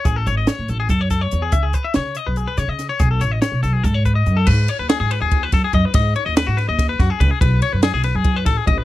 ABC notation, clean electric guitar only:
X:1
M:7/8
L:1/16
Q:1/4=143
K:G#phr
V:1 name="Clean electric guitar"
G A c d c2 A G A c A c2 G | e G B e c2 d B G B c d2 c | G A c d c2 A G A c B d2 A | B2 c B G G B G2 B A G d B |
d2 c d B F B d2 B F G B G | B2 c B G G B G2 B A G d B |]